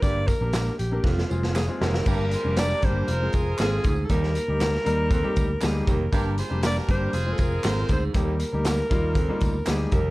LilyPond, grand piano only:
\new Staff \with { instrumentName = "Grand piano" } { \time 4/4 \key g \phrygian \tempo 4 = 118 <bes d' g' bes'>8 r16 <bes d' g' bes'>8 r8 <bes d' g' bes'>16 r8 <aes c' f' aes'>8 r16 <aes c' f' aes'>8 r16 | <g bes d' g'>8 r16 <g bes d' g'>8 r16 <g bes d' g'>8 r16 <aes c' f' aes'>8 r16 <aes c' f' aes'>8 r8 | <g bes ees' g'>8 r16 <g bes ees' g'>8 r16 <g bes ees' bes'>8 r16 <g bes ees' g'>8 r16 <g bes ees' g'>8 r8 | <g bes d' g'>8 r16 <g bes d' g'>8 r16 <g bes d' g'>8 r16 <aes c' f' aes'>8 r16 <aes c' f' bes'>8 r8 |
<g bes ees' g'>8 r16 <g bes ees' g'>8 r16 <g bes ees' f'>8 r16 <g bes ees' f'>8 r16 <g bes ees' g'>8 r8 | }